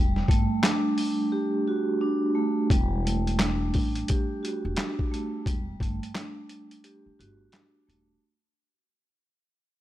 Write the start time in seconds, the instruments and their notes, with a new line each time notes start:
Already playing: upright bass E1, vibraphone G3
0.16 snare
0.28 upright bass G1, vibraphone A3, kick, closed hi-hat
0.63 vibraphone D4, snare, clap, closed hi-hat
0.98 open hi-hat
1.32 vibraphone G4
1.68 vibraphone F#4
2.01 vibraphone D4
2.35 vibraphone A3
2.70 upright bass E1, vibraphone G3, kick, closed hi-hat
3.06 vibraphone A3, closed hi-hat
3.27 closed hi-hat
3.39 vibraphone D4, snare, clap, closed hi-hat
3.74 upright bass A1, kick, open hi-hat
3.95 closed hi-hat
4.08 vibraphone G4, kick, closed hi-hat
4.43 vibraphone F#4, closed hi-hat
4.65 upright bass E1
4.76 vibraphone D4, snare, clap, closed hi-hat
4.99 kick
5.11 vibraphone A3, closed hi-hat
5.46 upright bass E1, vibraphone G3, kick, closed hi-hat
5.80 upright bass G1, vibraphone A3, kick, closed hi-hat
6.03 closed hi-hat
6.15 vibraphone D4, snare, clap, closed hi-hat
6.49 closed hi-hat
6.71 closed hi-hat
6.84 vibraphone G4, closed hi-hat
7.06 muted upright bass stroke
7.19 upright bass G1, vibraphone F#4, closed hi-hat
7.52 vibraphone D4, snare, clap, closed hi-hat
7.87 upright bass D#1, vibraphone A3, closed hi-hat